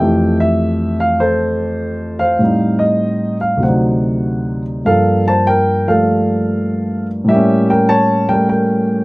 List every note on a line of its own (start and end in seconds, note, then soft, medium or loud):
0.00 2.39 F2 soft
0.00 2.39 E3 soft
0.00 2.40 A3 soft
0.00 2.40 G4 medium
0.00 0.39 E5 medium
0.00 0.36 G5 medium
0.40 0.96 E5 medium
1.00 1.18 F5 medium
1.20 2.36 A4 medium
1.20 2.19 C5 medium
2.19 3.38 C5 medium
2.19 2.82 F5 medium
2.39 3.61 A2 soft
2.39 3.62 G3 soft
2.39 3.63 C4 soft
2.44 3.64 D#4 soft
2.79 3.37 D#5 medium
3.41 3.62 F5 medium
3.57 4.83 D2 soft
3.57 4.85 C3 soft
3.63 4.87 F#3 soft
3.63 4.82 C5 soft
3.63 4.62 F#5 medium
3.68 4.89 D#4 soft
4.85 7.29 G2 soft
4.85 5.86 F3 soft
4.85 7.30 A#3 soft
4.85 5.25 A4 medium
4.85 5.28 F5 medium
5.28 5.47 C5 medium
5.28 5.46 A5 medium
5.47 5.86 A#4 medium
5.47 5.89 G5 medium
5.87 7.29 F3 soft
5.87 7.26 G3 soft
5.87 7.30 A3 soft
5.87 7.06 A4 medium
5.87 7.05 F5 medium
7.24 9.04 A2 medium
7.24 8.27 G3 medium
7.29 9.04 A#3 soft
7.29 7.67 G4 medium
7.29 7.71 E5 medium
7.35 9.04 C#4 medium
7.70 7.89 A#4 medium
7.70 7.88 G5 medium
7.89 8.27 C#5 medium
7.89 8.31 A5 medium
8.29 9.04 G3 soft
8.29 9.04 A3 soft
8.29 8.48 A#4 medium
8.29 8.48 G5 medium
8.49 9.04 A#4 medium
8.49 9.04 G5 medium